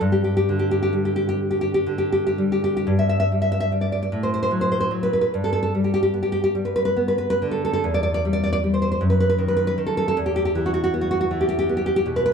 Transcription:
nylon-string guitar
0.01 G2
0.12 G4
0.24 G4
0.37 G4
0.49 D3
0.59 G4
0.71 G4
0.83 G4
0.93 G3
1.05 G4
1.16 G4
1.29 G4
1.51 G4
1.61 G4
1.74 G4
1.86 D3
1.98 G4
2.12 G4
2.27 G4
2.38 G3
2.52 G4
2.64 G4
2.77 G4
2.87 G2
2.99 E5
3.09 E5
3.20 E5
3.32 G3
3.42 E5
3.52 E5
3.60 E5
3.72 G3
3.81 D5
3.92 D5
4.03 D5
4.12 A2
4.23 C5
4.34 C5
4.43 C5
4.51 F#3
4.61 C5
4.72 C5
4.81 C5
4.91 F#3
5.03 B4
5.13 B4
5.21 B4
5.34 G2
5.44 A4
5.53 A4
5.63 A4
5.75 G3
5.84 G4
5.94 G4
6.03 G4
6.14 B3
6.23 G4
6.32 G4
6.44 G4
6.55 G3
6.65 B4
6.76 B4
6.85 B4
6.96 B3
7.08 B4
7.18 B4
7.30 B4
7.42 D3
7.51 A4
7.65 A4
7.73 A4
7.84 E2
7.94 D5
8.03 D5
8.14 D5
8.25 G3
8.33 D5
8.44 D5
8.53 D5
8.64 G3
8.74 C5
8.82 C5
8.92 C5
9.01 F#2
9.10 B4
9.20 B4
9.29 B4
9.38 D#3
9.48 B4
9.57 B4
9.67 B4
9.78 D#3
9.87 A4
9.97 A4
10.08 A4
10.17 E2
10.26 G4
10.36 G4
10.45 G4
10.55 E3
10.66 F#4
10.74 F#4
10.84 F#4
10.94 B3
11.01 F#4
11.11 F#4
11.21 F#4
11.31 E3
11.41 G4
11.49 G4
11.59 G4
11.69 B3
11.77 G4
11.86 G4
11.96 G4
12.06 B2
12.16 B4
12.26 B4

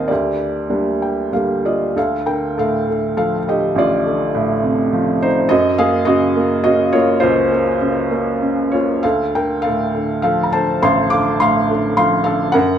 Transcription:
felt piano
Already playing: D#2 D#3 A#3 C4 A#4 C5 D#5 F5 G5 A5
0.08 D2 G4 A#4 D5
0.70 G3 A#3 D4
1.02 G5
1.32 D3 G3 A#3 F5
1.65 F4 D5 D#5
1.96 D2 A4 F5
2.26 D3 A#4 G5
2.57 A2 A4 F5
2.88 D3
3.17 F3 A4 F5
3.38 F5
3.48 D3 G4 D#5
3.76 A1 F4 D5
4.06 D3
4.35 A2
4.64 C3
4.93 F3
5.22 D#4 C5
5.49 F#2 F#4 D#5
5.78 A#3 G#4 F5
6.05 C#3 F#4 D#5
6.36 A#3
6.64 C#4 F#4 D#5
6.93 A#3 F4 C#5
7.20 C#2 F4 C5
7.51 A#3
7.82 C#3
8.11 A#3
8.42 C#4
8.72 A#3 F4 C#5
9.03 D2 A4 F5
9.35 D3 A#4 G5
9.62 A4 F5
9.67 A2
9.95 D3
10.22 F3 A4 F5
10.43 A#5
10.53 D3 C5 A5
10.82 A1 F5 C6
11.10 D3 F5 D6
11.40 A2 F5 C6
11.70 D3
11.97 F3 F5 C6
12.24 D3 A4 F5
12.52 F#2 A#4 F#5

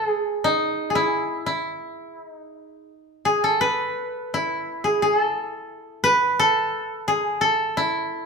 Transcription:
koto
Already playing: A4 B4
0.06 G#4
0.44 D#4
0.90 G#4
0.95 E4
1.46 E4
2.26 D#4
3.25 G#4
3.44 A4
3.61 B4
4.34 E4
4.84 G#4
5.02 G#4
5.17 A4
6.04 B4
6.39 A4
7.08 G#4
7.41 A4
7.77 E4

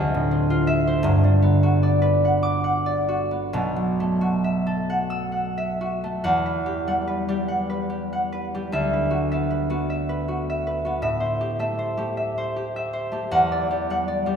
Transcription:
harp
Already playing: D2
0.14 A2
0.31 C4
0.50 F4
0.67 E5
0.87 C5
1.03 G1 G2
1.24 D3
1.42 B3
1.63 F#4
1.83 D5
2.02 B4
2.25 F#5
2.43 D6
2.64 F#5
2.86 D5
3.09 F#4
3.31 B3
3.53 B1 B2
3.76 F#3
4.00 A3
4.21 F#4
4.44 E5
4.67 A4
4.90 F#5
5.10 E6
5.32 F#5
5.58 E5
5.81 F#4
6.04 A3
6.24 E2 F#5
6.46 B4
6.66 G4
6.87 G3 F#5
7.08 B4
7.29 G3 G4
7.48 F#5
7.70 B4
7.90 G4
8.13 F#5
8.32 B4
8.55 G3 G4
8.72 D2 E5
8.93 B4
9.10 F#4
9.31 B3 E5
9.50 B4
9.70 B3 F#4
9.90 E5
10.09 B4
10.28 F#4
10.50 E5
10.67 B4
10.85 B3 F#4
11.02 A2 E5
11.20 C5
11.41 G4
11.59 A3 E5
11.79 C5
11.97 A3 G4
12.17 E5
12.38 C5
12.56 G4
12.76 E5
12.93 C5
13.12 A3 G4
13.31 E2 F#5
13.52 D5
13.71 G4
13.90 G3 F#5
14.08 D5
14.26 G3 G4

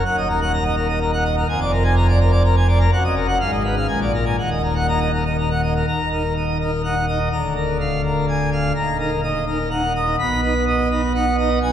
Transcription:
pipe organ
0.05 D#1 D#2 F#5
0.17 D#5
0.29 A#4
0.42 F#5
0.53 A#5
0.64 D#5
0.76 A#4
0.88 D#5
1.00 A#4
1.13 F#5
1.25 D#5
1.37 A#4
1.49 F1 F2 G#5
1.61 D5
1.73 A#4
1.84 G#5
1.96 A#5
2.08 D5
2.20 A#4
2.32 D5
2.45 A#4
2.57 G#5
2.68 D5
2.80 A#4
2.93 F#1 F#2 F#5
3.05 D#5
3.16 A#4
3.28 F#5
3.40 G#1 G#2 F5
3.52 D#5
3.64 B4
3.77 F5
3.88 A#1 A#2 G#5
4.01 D5
4.14 A#4
4.26 G#5
4.38 D#1 D#2 F#5
4.51 D#5
4.63 A#4
4.75 F#5
4.88 D#4 A#5
5.00 D#5
5.14 A#4
5.26 D#5
5.38 A#4
5.51 F#5
5.63 D#5
5.76 A#4
5.88 D#1 D#2 A#5
6.12 D#4 A#4
6.37 D#5
6.61 D#4 A#4
6.84 D#4 F#5
7.08 D#4 D#5
7.32 D1 D2 A#5
7.56 A#4
7.80 F5
8.04 A#4
8.29 G#5
8.52 F5
8.76 D#1 D#2 A#5
9.00 D#4 A#4
9.23 D#5
9.47 D#4 A#4
9.71 D#4 F#5
9.95 D#4 D#5
10.19 B1 B2 B5
10.43 D#4 B4
10.67 D#5
10.91 D#4 B4
11.15 D#4 F#5
11.38 D#4 D#5
11.62 B1 B2 G#5

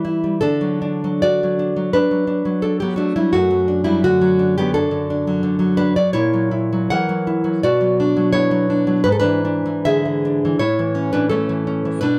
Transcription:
nylon-string guitar
Already playing: E3 G3
0.05 E4
0.24 G3
0.41 D3 D4 A4
0.61 F#3
0.82 D4
1.04 F#3
1.22 D4 F#4 D5
1.43 F#3
1.59 D4
1.76 F#3
1.93 D4 B4
2.11 F#3
2.27 D4
2.45 F#3
2.62 D4 A4
2.80 F#3 B3 G4
2.96 A3 D4 F#4
3.16 F#3 G3 E4
3.33 F#2 A3 F#4
3.51 F#3
3.68 D4
3.84 F#3 G3 E4
4.04 D3 A3 F#4
4.21 F#3
4.39 D4
4.58 F#3 B3 G4
4.74 F#2 D4 A4
4.91 D3
5.10 D4
5.27 F#3
5.43 D3
5.59 F#3
5.77 D4 B4
5.96 F#3 F#4 D5
6.13 A#2 E4 C#5
6.33 F#3
6.51 E4
6.73 F#3
6.90 E3 A#4 F#5
7.09 F#3
7.27 E4
7.44 F#3
7.63 B2 F#4 D5
7.81 F#3
8.00 D4
8.17 F#3
8.33 B3 E4 C#5
8.51 F#3
8.70 D4
8.87 F#3
9.04 G#2 B4
9.12 A4
9.20 E3 D4 B4
9.45 D4
9.66 E3
9.85 D3 G#4 E5
10.05 E3
10.25 D4
10.45 E3
10.59 A2 E4 C#5
10.79 E3
10.95 C#4
11.13 E3 D4 B4
11.29 A3 C#4 A4
11.49 E3
11.67 C#4
11.85 E3
12.01 B2 D4 B4

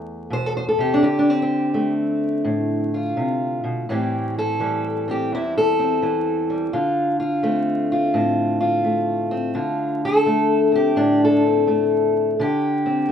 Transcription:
steel-string acoustic guitar
Already playing: E2 A3
0.30 B2 C5
0.46 A4
0.57 C5
0.69 A4
0.78 C3 G4
0.94 D4
1.03 D3 G4
1.19 D4
1.30 C4
1.42 C4
1.74 A3
2.45 A2
2.94 F4
3.17 C3
3.64 B2
3.89 A2 E3 G3 C4 G4
4.39 A4
4.60 E3 G3
5.08 C4 G4
5.32 E2 E4
5.58 A4
5.79 C4
6.02 E3
6.50 G3
6.73 D3 F4
7.20 F4
7.43 A3 C4
7.92 F4
8.14 A2 C4
8.60 F4
8.84 A3
9.31 C4
9.55 D3 F4
10.05 A4
10.26 A3
10.72 C4 G4
10.96 A2 D4
11.25 A4
11.46 C4
11.67 A3
12.39 D3 G4
12.86 C4
13.09 A3

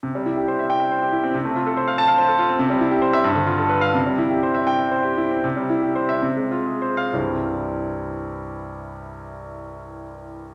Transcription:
grand piano
0.03 C3
0.15 G3
0.26 E4
0.37 G4
0.48 C5
0.59 E5
0.70 G5
0.80 E5
0.91 C5
1.02 G4
1.12 E4
1.23 C4
1.34 C3
1.45 A3
1.55 F4
1.66 A4
1.77 C5
1.88 F5
1.98 A5
2.08 F5
2.18 C5
2.28 A4
2.39 F4
2.49 C4
2.59 C3
2.70 G3
2.81 E4
2.91 G4
3.02 C5
3.13 E5
3.24 G2
3.35 D3
3.46 F4
3.58 A4
3.69 B4
3.81 F5
3.94 C3
4.06 G3
4.19 E4
4.30 G4
4.43 C5
4.55 E5
4.67 G5
4.79 E5
4.91 C5
5.05 G4
5.17 E4
5.31 C4
5.44 C3
5.57 G3
5.70 E4
5.82 G4
5.95 C5
6.09 E5
6.22 C3
6.36 G#3
6.51 F4
6.66 G#4
6.82 C5
6.97 F5
7.13 C2 G2 E3 G3 C4 E4

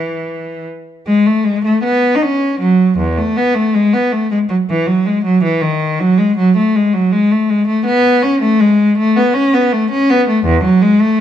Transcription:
cello
Already playing: E3
1.07 G#3
1.26 A3
1.44 G#3
1.65 A3
1.83 B3
2.15 D#4
2.23 C#4
2.60 F#3
2.98 E2
3.18 A3
3.37 B3
3.55 A3
3.74 G#3
3.94 B3
4.12 A3
4.31 G#3
4.49 F#3
4.70 E3
4.87 F#3
5.06 G#3
5.25 F#3
5.44 E3
5.62 D#3
6.00 F#3
6.18 G#3
6.37 F#3
6.57 A3
6.75 G#3
6.94 F#3
7.12 G#3
7.31 A3
7.50 G#3
7.67 A3
7.86 B3
8.23 C#4
8.42 A3
8.60 G#3
8.98 A3
9.17 B3
9.34 C#4
9.54 B3
9.72 A3
9.91 C#4
10.10 B3
10.28 A3
10.45 E2
10.64 F#3
10.82 G#3
11.01 A3

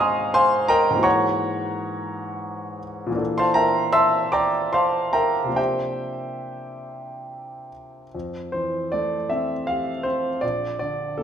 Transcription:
grand piano
Already playing: G#2 D#3 A#3 G4 G#4 C5 F5 A#5 C#6 F6
0.00 D#5 G#5 C6 D#6
0.34 C5 F5 G#5 C6
0.68 A#4 D#5 G5 A#5
0.90 G#2 E3
0.96 A#3 F#4
1.01 G#4 C#5 F#5 A#5 C#6
3.07 A#2 E3
3.12 A#3 D4
3.17 A4
3.38 C5 F5 A5 C6
3.54 A#4 E5 G5 A#5
3.93 E5 A5 C6 E6
4.32 D5 G5 A#5 D6
4.73 C5 F5 A5 C6
5.13 A#4 E5 G5 A#5
5.44 C3 F3
5.49 A#3 D4
5.56 G4 C5 E5 G5
8.15 F2
8.52 E3 C5
8.92 A3 D5
9.29 C4 E5
9.67 G4 F5
10.03 C4 C5
10.41 A#1 D5
10.79 D3 D5
11.18 A#3 A4

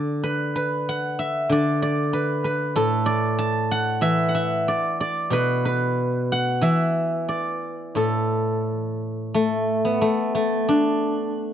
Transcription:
guzheng
Already playing: D3 A4 D5
0.23 B4
0.56 B4
0.89 F#5
1.19 E5
1.49 D3 D5
1.82 D5
2.13 B4
2.44 B4
2.76 A2 A4
3.06 D5
3.39 A5
3.71 F#5
4.01 E3 E5
4.29 F#5
4.35 E5
4.68 D5
5.01 D5
5.30 B2 B4
5.65 B4
6.32 F#5
6.61 E3 E5
7.29 D5
7.95 A2 A4
9.34 A3
9.85 B3
10.01 A3
10.35 A3
10.69 D4

